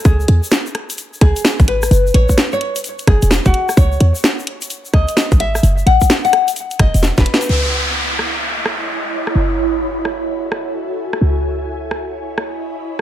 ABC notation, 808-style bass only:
X:1
M:4/4
L:1/16
Q:"Swing 16ths" 1/4=129
K:C#m
V:1 name="808-style bass" clef=bass
C,,2 E,, z6 z C,, z2 G,,,3 | F,,,2 A,,, z6 z F,,, E,,,2 E,,, z2 | C,,2 E,, z6 z C,, z2 G,,,3 | F,,,2 A,,, z6 z F,,, E,,,2 E,,, z2 |
C,,16 | F,,,16 | C,,16 |]